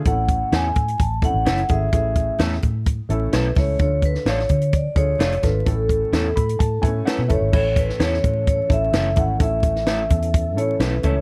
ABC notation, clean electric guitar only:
X:1
M:4/4
L:1/8
Q:1/4=128
K:A
V:1 name="Clean electric guitar"
z2 [A,CEA] z3 [A,CEA] z | z2 [A,CEA] z3 [A,CEA] z | z2 [A,D=FA] z3 [A,DFA] z | z2 [A,CEA] z3 [A,CEA] z |
z2 [A,CEA] z3 [A,CEA] z | z2 [A,CEA] z3 [A,CEA] [A,CEA] |]